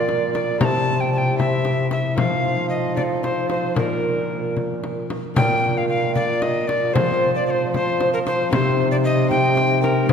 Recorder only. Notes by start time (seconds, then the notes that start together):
Already playing: D5
0.34 D5
0.60 A#5
0.65 A5
1.00 G5
1.13 A5
1.18 G5
1.38 E5
1.92 E5
2.17 F5
2.70 D#5
2.96 D5
3.23 C5
3.50 C5
3.77 A#4
5.36 G5
5.78 F5
5.89 F5
6.15 D5
6.42 D#5
6.67 D5
6.94 C5
7.35 D5
7.47 C5 D5
7.74 C5
8.13 A#4
8.26 C5
8.52 C5
8.91 D5
9.04 D#5
9.30 G5
9.82 A#4
10.10 C5